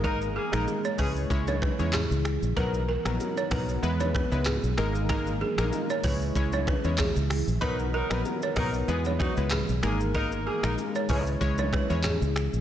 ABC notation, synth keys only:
X:1
M:4/4
L:1/16
Q:"Swing 16ths" 1/4=95
K:C#dor
V:1 name="Synth keys"
[G,A,DA] z2 [G,A,DA]3 [G,CEc]2 [G,CEc]3 [G,CEc] z4 | [F,B,DA] z2 [F,B,DA]3 [F,B,DA]2 [G,B,EB]3 [G,B,EB] z2 [G,A,DA]2 | [G,A,DA] z2 [G,A,DA]3 [G,CEc]2 [G,CEc]3 [G,CEc] z4 | [F,B,DA] z2 [F,B,DA]3 [F,B,DA]2 [G,B,EB]3 [G,B,EB] z2 [G,A,DA]2 |
[G,A,DA] z2 [G,A,DA]3 [G,CEc]2 [G,CEc]3 [G,CEc] z4 |]